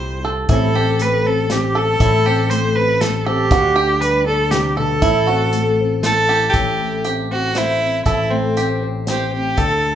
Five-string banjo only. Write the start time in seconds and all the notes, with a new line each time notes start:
0.25 A4
0.49 E4
0.75 G4
1.75 A4
2.01 E4
2.26 G4
3.26 A4
3.52 F#4
3.76 G4
4.77 A4
5.02 E4
5.27 F#4
6.29 G4
6.54 A4
7.05 G4
7.56 C5
8.06 A4
8.57 G4
9.08 C5
9.58 A4